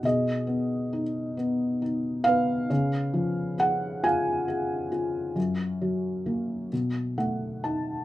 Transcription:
<<
  \new Staff \with { instrumentName = "Felt piano" } { \time 6/8 \key cis \dorian \tempo 4. = 45 << { dis''4 r4. eis''8~ | eis''4 fis''8 gis''4.~ | gis''2 fis''8 a''8 | } \\ { gis'4. r4 b'8~ | b'4 r8 eis''4.~ | eis''2 r4 | } >> }
  \new Staff \with { instrumentName = "Felt piano" } { \time 6/8 \key cis \dorian b,8 b8 dis'8 b8 dis'8 b8 | cis8 eis8 gis'8 eis'8 gis'8 eis'8 | fis,8 fis8 ais8 b,8 a8 dis'8 | }
>>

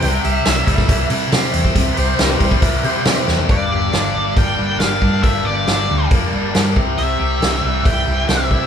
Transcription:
<<
  \new Staff \with { instrumentName = "Lead electric guitar" } { \time 4/4 \key g \dorian \tempo 4 = 138 r1 | r1 | d''2 g''4 f''4 | e''8 d''4. r2 |
e''2 g''4 e''4 | }
  \new Staff \with { instrumentName = "Tonewheel organ" } { \time 4/4 \key g \dorian g''8 e''2 r4. | r8 <b' c''>8 <e g c' bes'>8 <b' c''>8 bes'8 <g' c''>8 <e g c'>8 r8 | <g' bes' d''>1~ | <g' bes' d''>2.~ <g' bes' d''>8 <e' g' c''>8~ |
<e' g' c''>1 | }
  \new Staff \with { instrumentName = "Overdriven electric guitar" } { \time 4/4 \key g \dorian c8 g'8 e'8 g8 e8 e'8 g'8 e'8 | c8 g'8 e'8 g8 e8 e'8 g'8 e'8 | g,8 g'8 d'8 g8 bes8 d'8 g'8 d'8 | g,8 g'8 d'8 g8 bes8 d'8 g'8 c8 |
c8 g'8 e'8 e8 g8 e'8 g'8 e'8 | }
  \new Staff \with { instrumentName = "Overdriven electric guitar" } { \clef bass \time 4/4 \key g \dorian c8 g8 c8 g8 e'8 g8 c'8 c8 | c8 g8 c8 g8 e'8 g8 c'8 c8 | g,8 d8 d8 g8 d'8 g8 bes8 d'8 | g,8 d8 d8 g8 d'8 g8 bes8 c8 |
c8 g8 c8 g8 e'8 g8 c'8 e'8 | }
  \new Staff \with { instrumentName = "Fingered electric bass" } { \clef bass \time 4/4 \key g \dorian c,8 c,8 c,8 c,8 c,8 c8 c8 e,8 | c,8 c,8 c,8 c,8 c,8 c8 c8 e,8 | g,,8 g,,8 g,,8 g,,8 g,,8 g,,8 g,,8 g,8 | g,,8 g,,8 g,,8 d,8 f,8 g,,8 g,8 c,8 |
c,8 c,8 c,8 c,8 c,8 c,8 c,8 c8 | }
  \new DrumStaff \with { instrumentName = "Drums" } \drummode { \time 4/4 hho8 hho8 <hho sn>8 <hho bd>16 <bd sn>16 <hho bd>8 hho8 <hho sn>8 hho16 bd16 | <hho bd>8 hho8 <hho sn>8 <hho bd>16 bd16 <hho bd>8 hho8 <hho sn>8 sn16 tomfh16 | <hho bd>4 <hho sn>4 <hho bd>4 <hho sn>8 bd8 | <hho bd>4 <hho sn>4 <hho bd>4 <hho sn>8 bd8 |
hho4 <hho sn>4 <hho bd>4 <hho sn>8 bd8 | }
>>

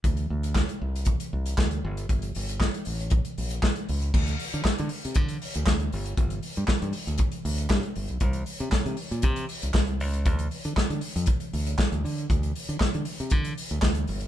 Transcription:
<<
  \new Staff \with { instrumentName = "Fingered electric bass" } { \clef bass \time 4/4 \key bes \lydian \tempo 4 = 118 d,8 d,8. r16 c,8. r16 c,8 d,8 g,,8 | g,,8 g,,8. r16 a,,8. r16 bes,,8 r8 cis,8 | d,8 r16 d16 r16 d16 r16 c16 d8 r16 d,16 d,8 g,,8 | g,,8 r16 g,16 r16 g,16 r16 d,16 r8 d,8 g,16 r16 g,,16 b,,16 |
c,8 r16 c16 r16 c16 r16 bes,16 c8 r16 c,16 c,8 des,8 | d,8 r16 d16 r16 d16 r16 f,16 r8 d,8 r16 d,16 d8 | d,8 r16 d16 r16 d16 r16 c16 d8 r16 d,16 d,8 g,,8 | }
  \new DrumStaff \with { instrumentName = "Drums" } \drummode { \time 4/4 <hh bd>16 hh8 hh16 <hc bd sn>16 hh8 hh16 <hh bd>16 hh8 hh16 <hc bd sn>16 hh8 hh16 | <hh bd>16 hh16 hho16 hh16 <hc bd sn>16 hh16 hho16 hh16 <hh bd>16 hh16 hho16 hh16 <hc bd sn>16 hh16 hho16 hh16 | <cymc bd>16 hh16 hho16 hh16 <hc bd sn>16 hh16 hho16 hh16 <hh bd>16 hh16 hho16 hh16 <hc bd sn>16 hh16 hho16 hh16 | <hh bd>16 hh16 hho16 hh16 <hc bd sn>16 hh16 hho16 hh16 <hh bd>16 hh16 hho16 hh16 <hc bd sn>16 hh16 hho16 hh16 |
<hh bd>16 hh16 hho16 hh16 <hc bd sn>16 hh16 hho16 hh16 <hh bd>16 hh16 hho16 hh16 <hc bd sn>16 hh16 hho16 hh16 | <hh bd>16 hh16 hho16 hh16 <hc bd sn>16 hh16 hho16 hh16 <hh bd>16 hh16 hho16 hh16 <hc bd sn>16 hh16 hho16 hh16 | <hh bd>16 hh16 hho16 hh16 <hc bd sn>16 hh16 hho16 hh16 <hh bd>16 hh16 hho16 hh16 <hc bd sn>16 hh16 hho16 hh16 | }
>>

